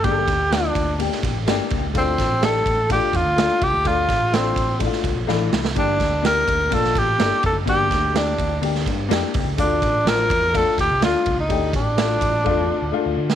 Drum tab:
RD |x-x-x-x-x-x-x-x-|x-x-x-x-x-x-x-x-|x-x-x-x-x-x-----|x-x-x-x-x-x-x-x-|
HH |----------------|----------------|----------------|----------------|
SD |----o----o--o---|--o-o-------o---|--o-o----o--o-oo|--o-o----o--o---|
BD |o-o---o---o---o-|o-o---o-o-o---o-|o-o---o-o-o-----|o-o---o-o-o---o-|

RD |x-x-x-x-x-x-x-x-|x-x-x-x-x-x-x-x-|x-x-x-x---------|
HH |--------------o-|p---------------|----------------|
SD |--o-o----o--o---|----o-------o---|----o----------o|
BD |o-o---o---o---o-|o-o---o-o-o---o-|o-o---o-o-------|